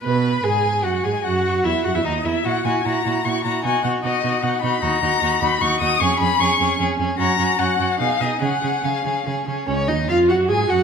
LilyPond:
<<
  \new Staff \with { instrumentName = "Violin" } { \time 3/4 \key b \major \tempo 4 = 149 b''4 gis''4 fis''8 gis''8 | fis''4 e''8 fis''16 e''16 dis''8 e''8 | fis''8 gis''8 ais''4 cis'''8 ais''8 | gis''8 fis''8 dis''4 fis''8 b''8 |
\key fis \major ais''4. b''8 cis'''8 dis'''8 | cis'''8 b''8 cis'''4 r4 | ais''4 fis''4 eis''8 dis''8 | fis''4 eis''4 r4 |
cis'8 dis'8 eis'8 fis'8 gis'8 fis'8 | }
  \new Staff \with { instrumentName = "Violin" } { \time 3/4 \key b \major b'4 gis'4 fis'8 gis'8 | fis'4 e'8 fis'16 e'16 dis'8 e'8 | fis'8 fis'8 fis'8 fis'8 fis'8 fis'8 | fis'8 fis'8 fis'8 fis'8 fis'8 fis'8 |
\key fis \major fis'8 fis'8 fis'8 fis'8 fis'8 fis'8 | gis'8 gis'8 gis'8 gis'8 gis'8 gis'8 | fis'8 fis'8 fis'8 fis'8 gis'8 gis'8 | gis'8 gis'8 gis'8 gis'8 gis'8 gis'8 |
cis''8 dis''8 eis''8 fis''8 gis''8 fis''8 | }
  \new Staff \with { instrumentName = "Viola" } { \time 3/4 \key b \major b'4 gis'4 fis'8 gis'8 | fis'4 e'8 fis'16 e'16 dis'8 e'8 | e'8 e'8 e'8 e'8 e'8 e'8 | dis'8 dis'8 dis'8 dis'8 dis'8 dis'8 |
\key fis \major dis'8 dis'8 dis'8 dis'8 dis'8 dis'8 | cis'8 cis'8 cis'8 cis'8 cis'8 cis'8 | cis'8 cis'8 cis'8 cis'8 dis'8 dis'8 | cis'8 cis'8 cis'8 cis'8 cis'8 cis'8 |
cis'8 dis'8 eis'8 fis'8 gis'8 fis'8 | }
  \new Staff \with { instrumentName = "Cello" } { \clef bass \time 3/4 \key b \major b,4 gis,4 fis,8 gis,8 | fis,4 e,8 fis,16 e,16 dis,8 e,8 | ais,8 ais,8 ais,8 ais,8 ais,8 ais,8 | b,8 b,8 b,8 b,8 b,8 b,8 |
\key fis \major dis,8 dis,8 dis,8 dis,8 dis,8 dis,8 | eis,8 eis,8 eis,8 eis,8 eis,8 eis,8 | fis,8 fis,8 fis,8 fis,8 b,8 b,8 | cis8 cis8 cis8 cis8 cis8 cis8 |
cis,8 dis,8 eis,8 fis,8 gis,8 fis,8 | }
>>